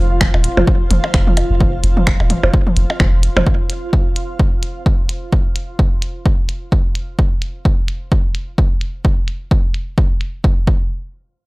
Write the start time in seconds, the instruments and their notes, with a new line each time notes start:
Already playing: sub bass F1, ambient pad F4 C5 F5
0.21 finger snap, kick, high tom
0.34 sub bass D#1, percussion blips
0.44 closed hi-hat
0.57 sub bass F1, high tom, percussion blips
0.67 kick
0.91 sub bass F1, closed hi-hat, high tom
1.04 percussion blips
1.14 sub bass F1, finger snap, kick
1.27 high tom
1.37 closed hi-hat, percussion blips
1.50 sub bass F1
1.60 kick, high tom
1.84 sub bass F1, closed hi-hat
1.97 high tom
2.07 finger snap, kick
2.20 sub bass D#1, percussion blips
2.30 closed hi-hat, high tom
2.43 sub bass F1, percussion blips
2.54 kick
2.67 high tom
2.77 sub bass F1, closed hi-hat
2.90 percussion blips
3.00 sub bass F1, finger snap, kick, high tom
3.23 closed hi-hat
3.37 sub bass F1, high tom, percussion blips
3.47 kick
3.70 closed hi-hat
3.93 kick
4.16 closed hi-hat
4.40 kick
4.63 closed hi-hat
4.86 kick
5.09 closed hi-hat
5.33 kick
5.56 closed hi-hat
5.79 kick
6.02 closed hi-hat
6.26 kick
6.49 closed hi-hat
6.72 kick
6.95 closed hi-hat
7.19 kick
7.42 closed hi-hat
7.65 kick
7.88 closed hi-hat
8.12 kick
8.35 closed hi-hat
8.58 kick
8.81 closed hi-hat
9.05 kick
9.28 closed hi-hat
9.51 kick
9.74 closed hi-hat
9.98 kick
10.21 closed hi-hat
10.44 kick
10.67 kick